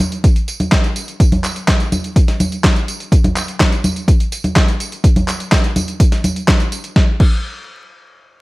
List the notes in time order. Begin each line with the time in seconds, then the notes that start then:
0.12 closed hi-hat, tambourine
0.24 kick, closed hi-hat, tambourine
0.36 closed hi-hat, tambourine
0.48 closed hi-hat, tambourine
0.60 closed hi-hat, tambourine, high conga
0.72 kick, snare, clap, closed hi-hat, tambourine
0.84 closed hi-hat, tambourine
0.96 closed hi-hat, tambourine
1.08 closed hi-hat, tambourine
1.20 kick, closed hi-hat, tambourine
1.32 closed hi-hat, tambourine, high conga
1.44 clap, closed hi-hat, tambourine
1.56 closed hi-hat, tambourine
1.68 kick, snare, clap, closed hi-hat, tambourine
1.80 closed hi-hat, tambourine
1.92 closed hi-hat, tambourine, high conga
2.04 closed hi-hat, tambourine
2.16 kick, closed hi-hat, tambourine
2.28 snare, closed hi-hat, tambourine
2.40 closed hi-hat, tambourine, high conga
2.52 closed hi-hat, tambourine
2.64 kick, snare, clap, closed hi-hat, tambourine
2.76 closed hi-hat, tambourine
2.88 closed hi-hat, tambourine
3.00 closed hi-hat, tambourine
3.12 kick, closed hi-hat, tambourine
3.24 closed hi-hat, tambourine, high conga
3.36 clap, closed hi-hat, tambourine
3.48 closed hi-hat, tambourine
3.60 kick, snare, clap, closed hi-hat, tambourine
3.72 closed hi-hat, tambourine
3.84 closed hi-hat, tambourine, high conga
3.96 closed hi-hat, tambourine
4.08 kick, closed hi-hat, tambourine
4.20 closed hi-hat, tambourine
4.32 closed hi-hat, tambourine
4.44 closed hi-hat, tambourine, high conga
4.56 kick, snare, clap, closed hi-hat, tambourine
4.68 closed hi-hat, tambourine
4.80 closed hi-hat, tambourine
4.92 closed hi-hat, tambourine
5.04 kick, closed hi-hat, tambourine
5.16 closed hi-hat, tambourine, high conga
5.28 clap, closed hi-hat, tambourine
5.40 closed hi-hat, tambourine
5.52 kick, snare, clap, closed hi-hat, tambourine
5.64 closed hi-hat, tambourine
5.76 closed hi-hat, tambourine, high conga
5.88 closed hi-hat, tambourine
6.00 kick, closed hi-hat, tambourine
6.12 snare, closed hi-hat, tambourine
6.24 closed hi-hat, tambourine, high conga
6.36 closed hi-hat, tambourine
6.48 kick, snare, clap, closed hi-hat, tambourine
6.60 closed hi-hat, tambourine
6.72 closed hi-hat, tambourine
6.84 closed hi-hat, tambourine
6.96 kick, snare
7.20 kick, crash